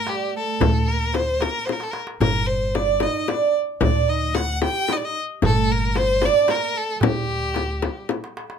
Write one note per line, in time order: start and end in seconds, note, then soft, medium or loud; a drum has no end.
0.00 0.10 A#4 medium
0.07 0.27 G3 medium
0.07 0.35 G4 medium
0.07 darbuka tek medium
0.28 0.34 A#3 medium
0.34 0.88 A3 medium
0.34 0.89 A4 medium
0.61 1.45 D2 medium
0.61 darbuka dum medium
0.61 frame drum loud
0.87 1.16 A#3 medium
0.87 1.16 A#4 medium
0.87 darbuka ka soft
1.12 1.41 C4 medium
1.12 1.43 C5 medium
1.12 darbuka tek medium
1.12 frame drum medium
1.29 darbuka ka soft
1.39 1.62 A#3 medium
1.39 1.67 A#4 medium
1.39 darbuka tek medium
1.39 frame drum medium
1.54 darbuka ka soft
1.65 1.74 C5 medium
1.65 darbuka tek medium
1.65 frame drum medium
1.72 1.85 A#4 medium
1.80 1.93 A4 medium
1.80 darbuka ka medium
1.91 2.01 A#4 medium
1.91 darbuka tek medium
2.07 darbuka ka medium
2.20 3.05 G1 loud
2.20 2.49 A#3 medium
2.20 2.48 A#4 loud
2.20 frame drum medium
2.20 darbuka dum medium
2.46 2.75 C4 medium
2.46 2.77 C5 medium
2.46 darbuka ka soft
2.75 3.01 D4 medium
2.75 3.04 D5 medium
2.75 darbuka tek medium
2.75 frame drum medium
3.00 3.28 D#4 medium
3.00 3.30 D#5 medium
3.00 darbuka tek medium
3.00 frame drum medium
3.28 3.53 D4 medium
3.28 3.55 D5 medium
3.28 darbuka tek medium
3.28 frame drum medium
3.81 4.66 D2 medium
3.81 3.89 D4 medium
3.81 4.11 D5 medium
3.81 frame drum loud
3.81 darbuka dum medium
3.89 3.94 C4 medium
3.95 4.08 D4 medium
4.08 4.35 D#4 medium
4.08 4.36 D#5 medium
4.08 darbuka ka soft
4.34 4.61 F#4 medium
4.34 4.62 F#5 medium
4.34 darbuka tek medium
4.34 frame drum medium
4.61 4.88 G4 loud
4.61 4.94 G5 medium
4.61 darbuka tek medium
4.61 frame drum medium
4.88 5.00 D#4 medium
4.88 darbuka tek medium
4.88 frame drum medium
4.93 4.98 D#5 medium
4.97 5.06 D5 medium
5.02 5.14 D#4 medium
5.02 5.17 D#5 medium
5.42 6.27 G1 loud
5.42 5.70 A3 medium
5.42 5.74 A4 loud
5.42 frame drum medium
5.42 darbuka dum medium
5.69 5.97 A#3 medium
5.69 5.98 A#4 medium
5.69 darbuka ka soft
5.95 6.22 C4 medium
5.95 6.26 C5 loud
5.95 darbuka tek medium
5.95 frame drum medium
6.22 6.48 D4 loud
6.22 6.52 D5 loud
6.22 darbuka tek medium
6.22 frame drum medium
6.48 6.74 A#3 medium
6.48 6.79 A#4 medium
6.48 darbuka tek medium
6.48 frame drum medium
6.74 6.95 A3 medium
6.74 7.02 A4 medium
6.96 7.03 F#3 soft
7.01 7.87 D2 medium
7.01 8.06 G3 medium
7.01 8.06 G4 medium
7.01 darbuka dum medium
7.01 frame drum loud
7.54 darbuka tek medium
7.54 frame drum medium
7.82 darbuka tek medium
7.82 frame drum medium
7.97 darbuka ka soft
8.09 darbuka tek medium
8.09 frame drum medium
8.24 darbuka ka medium
8.37 darbuka tek medium
8.50 darbuka ka medium